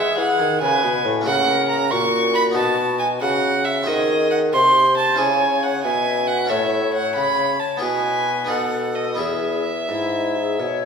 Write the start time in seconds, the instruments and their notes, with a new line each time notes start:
Already playing: harpsichord G#3 E4 G#4, bassoon G#3, flute G#4, violin E5
0.18 harpsichord E3, bassoon E3, violin F#5
0.39 harpsichord D#3, bassoon D#3
0.61 bassoon C#3, harpsichord C#3, flute B4, violin G#5
0.83 harpsichord B2, bassoon B2
1.05 bassoon A2, harpsichord A2
1.21 harpsichord A#3 E4 F#4
1.26 harpsichord C#3, bassoon C#3, flute A#4, violin F#5
1.69 violin A#5
1.91 harpsichord A#2, bassoon A#2, flute F#4, violin C#6
2.35 violin B5
2.51 harpsichord B3 D#4 F#4
2.55 harpsichord B2, bassoon B2, violin A5
2.99 violin G#5
3.21 harpsichord C#3, bassoon C#3, flute F#4, violin F#5
3.65 violin E5
3.82 harpsichord C4 F#4 G#4
3.87 harpsichord D#3, bassoon D#3, flute G#4, violin D#5
4.31 violin F#5
4.53 harpsichord C3, bassoon C3, flute C5, violin C6
4.97 violin A5
5.15 harpsichord C#4 E4 G#4, flute C#5, violin G#5
5.19 harpsichord C#3, bassoon C#3
5.63 violin F#5
5.84 bassoon B2, harpsichord B2, flute E5, violin G#5
6.27 violin F#5
6.46 harpsichord C#4 F#4 A4, violin E5
6.50 harpsichord A2, bassoon A2, flute C#5
6.94 violin F#5
7.15 harpsichord C#3, bassoon C#3, violin B5
7.59 violin A5
7.77 harpsichord B3 E4 G#4
7.82 harpsichord B2, bassoon B2, flute B4, violin G#5
8.44 harpsichord B3 D#4 A4
8.49 bassoon B2, harpsichord B2, flute A4, violin F#5
8.95 violin D#5
9.15 bassoon E2, harpsichord B3 E4 G#4, violin E5
9.19 harpsichord E2, flute G#4
9.89 harpsichord G#2, bassoon G#2, flute E4
10.37 flute G#4
10.59 bassoon B2, harpsichord B2, flute C#5